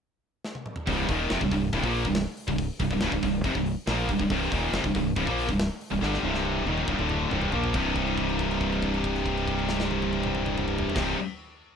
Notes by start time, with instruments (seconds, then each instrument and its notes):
0.44 snare
0.55 high tom
0.66 mid tom
0.76 floor tom
0.87 fingered electric bass C1, distorted electric guitar C2 G2 C3, kick, open hi-hat
1.09 fingered electric bass D#1, distorted electric guitar D#2 A#2 D#3, kick, open hi-hat
1.30 fingered electric bass F1, distorted electric guitar F2 C3, snare, open hi-hat
1.41 fingered electric bass C1, distorted electric guitar C2 G2, kick
1.51 fingered electric bass C1, distorted electric guitar C2 G2, kick, open hi-hat
1.73 fingered electric bass C1, distorted electric guitar C2 G2, kick, open hi-hat
1.83 fingered electric bass A#1, distorted electric guitar A#2 F3 A#3, kick
1.94 open hi-hat
2.04 fingered electric bass C1, distorted electric guitar C2 G2, kick
2.15 snare, open hi-hat
2.37 open hi-hat
2.47 fingered electric bass C1, distorted electric guitar C2 G2, kick
2.58 kick, open hi-hat
2.79 fingered electric bass C1, distorted electric guitar C2 G2, kick, open hi-hat
2.91 fingered electric bass C1, distorted electric guitar C2 G2, kick
3.01 fingered electric bass C1, distorted electric guitar C2 G2, snare, open hi-hat
3.12 fingered electric bass C1, distorted electric guitar C2 G2, kick
3.22 fingered electric bass C1, distorted electric guitar C2 G2, kick, open hi-hat
3.44 fingered electric bass F1, distorted electric guitar F2 C3, kick, open hi-hat
3.55 fingered electric bass C1, distorted electric guitar C2 G2, kick
3.66 open hi-hat
3.87 fingered electric bass A#1, distorted electric guitar A#2 F3 A#3, snare, open hi-hat
4.09 fingered electric bass C1, distorted electric guitar C2 G2, kick, open hi-hat
4.19 fingered electric bass C1, distorted electric guitar C2 G2, kick
4.30 fingered electric bass C1, distorted electric guitar C2 G2 C3, kick, open hi-hat
4.51 fingered electric bass D#1, distorted electric guitar D#2 A#2 D#3, kick, open hi-hat
4.72 fingered electric bass F1, distorted electric guitar F2 C3, snare, open hi-hat
4.84 fingered electric bass C1, distorted electric guitar C2 G2, kick
4.95 fingered electric bass C1, distorted electric guitar C2 G2, kick, open hi-hat
5.16 fingered electric bass C1, distorted electric guitar C2 G2, kick, open hi-hat
5.26 fingered electric bass A#1, distorted electric guitar A#2 F3 A#3, kick
5.38 open hi-hat
5.48 fingered electric bass C1, distorted electric guitar C2 G2, kick
5.60 snare, open hi-hat
5.81 open hi-hat
5.91 fingered electric bass C1, distorted electric guitar C2 G2
6.02 fingered electric bass G1, distorted electric guitar G2 D3 G3, snare
6.14 snare
6.23 fingered electric bass C1, distorted electric guitar C2 G2 C3
6.34 snare
6.45 high tom
6.65 fingered electric bass D#1, distorted electric guitar D#2 A#2 D#3, high tom
6.78 mid tom
6.88 fingered electric bass C1, distorted electric guitar C2 G2, kick
6.99 fingered electric bass D1, distorted electric guitar D2 A2 D3, mid tom
7.09 mid tom
7.30 fingered electric bass C1, distorted electric guitar C2 G2 C3, mid tom
7.42 floor tom
7.52 fingered electric bass A#1, distorted electric guitar A#2 F3 A#3, floor tom
7.64 floor tom
7.73 fingered electric bass C1, distorted electric guitar C2 G2 C3 G3 D#4, kick, crash
7.96 kick, crash
8.07 crash
8.18 kick, crash
8.29 crash
8.39 kick, crash
8.51 crash
8.61 kick, crash
8.72 crash
8.82 kick, crash
8.94 crash
9.04 kick, crash
9.15 crash
9.26 kick, crash
9.37 crash
9.47 kick, crash
9.59 crash
9.69 snare
9.80 snare
9.91 high tom
10.02 high tom
10.13 high tom
10.23 mid tom
10.35 mid tom
10.46 mid tom
10.58 mid tom
10.68 mid tom
10.78 floor tom
10.90 floor tom
10.95 fingered electric bass C1, distorted electric guitar C2 G2 C3 G3, kick, snare, crash
10.99 distorted electric guitar D#4